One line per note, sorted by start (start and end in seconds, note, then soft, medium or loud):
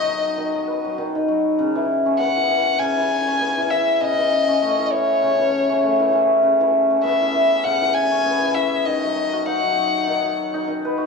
0.00 0.36 D#3 medium
0.00 0.57 A3 medium
0.00 2.19 B3 medium
0.00 2.05 C#4 medium
0.00 1.82 D#4 medium
0.00 2.88 F#4 medium
0.00 0.97 D#5 loud
0.07 0.42 F#3 medium
0.37 0.97 D#3 medium
0.54 0.83 F#3 medium
0.67 3.41 B4 medium
0.84 1.03 F#3 medium
0.98 1.14 D#3 medium
1.15 1.63 D#3 medium
1.28 1.63 F#3 medium
1.59 2.79 C#3 medium
1.76 2.36 E3 medium
2.06 3.27 C#4 medium
2.19 3.40 B3 medium
2.19 2.80 F#5 medium
2.37 2.49 E3 medium
2.50 2.85 E3 medium
2.79 4.00 C#3 medium
2.79 3.72 G#5 loud
2.97 3.56 E3 medium
3.27 4.48 C#4 medium
3.41 7.03 B3 medium
3.57 3.70 E3 medium
3.70 4.06 E3 medium
3.70 4.02 E5 loud
4.00 5.21 C#3 medium
4.00 4.86 D#5 loud
4.18 4.77 E3 medium
4.48 5.69 C#4 medium
4.62 5.82 A3 medium
4.78 4.91 E3 medium
4.86 4.93 D#5 medium
4.92 5.27 E3 medium
4.92 6.13 C#5 medium
5.23 6.42 C#3 medium
5.39 5.98 E3 medium
5.70 6.90 C#4 medium
5.83 10.26 A3 medium
6.00 6.12 E3 medium
6.13 6.48 E3 medium
6.43 7.63 C#3 medium
6.60 7.20 E3 medium
6.90 8.11 C#4 medium
7.03 8.25 B3 medium
7.03 7.65 E5 medium
7.21 7.33 E3 medium
7.35 7.69 E3 medium
7.64 8.91 C#3 medium
7.64 7.95 F#5 loud
7.81 8.41 E3 medium
7.94 8.56 G#5 loud
8.12 11.06 C#4 medium
8.25 11.06 B3 medium
8.42 8.54 E3 medium
8.54 8.91 E3 medium
8.54 8.86 E5 loud
8.85 10.06 D#3 medium
8.85 9.47 D#5 loud
9.03 9.62 F#3 medium
9.33 10.97 F#4 medium
9.45 10.54 D#4 medium
9.45 10.67 F#5 medium
9.63 9.76 F#3 medium
9.77 10.12 F#3 medium
10.07 10.66 D#3 medium
10.24 10.72 F#3 medium
10.54 11.06 D#4 medium
10.67 11.06 D#3 medium
10.85 11.06 B4 medium
10.98 11.06 F#4 medium